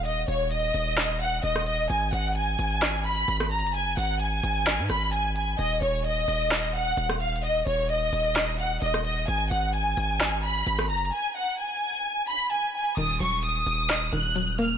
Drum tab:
CC |------------------------------------------------|------------------------------------------------|------------------------------------------------|------------------------------------------------|
HH |x-----x-----x-----x-----x-----x-----x-----x-----|x-----x-----x-----x-----x-----------x-----x-x-x-|x-----o-----x-----x-----x-----x-----x-----x-----|x-----x-----x-----x-----x-----------x-----x-x-x-|
CP |------------------------x-----------------------|------------------------x-----------------------|------------------------x-----------------------|------------------------x-----------------------|
SD |------------------------o--------------r--------|------------------------o--------------r--------|------------------------o-----r-----------------|------------------------o--------------r--------|

CC |------------------------------------------------|------------------------------------------------|------------------------------------------------|x-----------------------------------------------|
HH |x-----x-----x-----x-----x-----x-----x-----x-----|x-----x-----x-----x-----x-----------x-----x-x-x-|------------------------------------------------|x-----o-----x-----x-----x-----x-----x-----x-----|
CP |------------------------x-----------------------|------------------------x-----------------------|------------------------------------------------|------------------------x-----------------------|
SD |------------------------o--------------r--------|------------------------o--------------r--------|------------------------------------------------|------------------------o-----------------------|